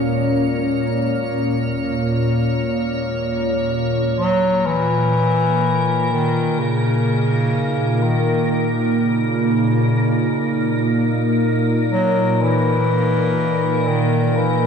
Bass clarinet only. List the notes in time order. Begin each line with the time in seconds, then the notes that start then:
4.17 F#3
4.66 E3
6.13 D#3
6.59 C#3
8.03 D#3
9.00 C#3
11.90 F#3
12.42 E3
13.87 D#3
14.36 E3